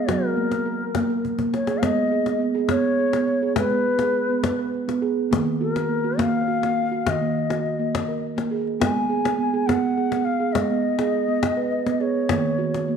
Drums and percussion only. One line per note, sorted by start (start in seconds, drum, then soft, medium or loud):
0.09 cajon bass soft
0.09 cajon slap soft
0.52 cajon slap soft
0.80 cajon slap soft
0.95 cajon bass soft
0.95 cajon slap soft
1.10 cajon slap soft
1.25 cajon bass soft
1.39 cajon bass soft
1.54 cajon slap soft
1.67 cajon slap soft
1.83 cajon bass soft
1.83 cajon slap soft
1.96 cajon slap soft
2.26 cajon slap soft
2.69 cajon bass soft
2.69 cajon slap soft
2.98 cajon slap soft
3.13 cajon slap soft
3.28 cajon slap soft
3.56 cajon bass medium
3.56 cajon slap medium
3.70 cajon slap soft
3.99 cajon slap soft
4.44 cajon bass soft
4.44 cajon slap medium
4.74 cajon slap soft
4.89 cajon slap soft
5.03 cajon slap soft
5.33 cajon bass soft
5.33 cajon slap medium
5.76 cajon slap soft
6.19 cajon bass soft
6.19 cajon slap soft
6.49 cajon slap soft
6.63 cajon slap soft
6.78 cajon slap soft
7.07 cajon bass medium
7.07 cajon slap medium
7.50 cajon slap soft
7.66 cajon slap soft
7.95 cajon bass soft
7.95 cajon slap medium
8.09 cajon slap soft
8.38 cajon slap soft
8.67 cajon slap soft
8.82 cajon bass medium
8.82 cajon slap medium
8.96 cajon slap soft
9.25 cajon slap soft
9.69 cajon bass soft
9.69 cajon slap soft
9.98 cajon slap soft
10.12 cajon slap soft
10.27 cajon slap soft
10.55 cajon bass soft
10.55 cajon slap soft
10.70 cajon slap soft
10.99 cajon slap soft
11.43 cajon bass soft
11.43 cajon slap soft
11.72 cajon slap soft
11.86 cajon slap soft
12.00 cajon slap soft
12.29 cajon bass medium
12.29 cajon slap medium
12.45 cajon slap soft
12.74 cajon slap soft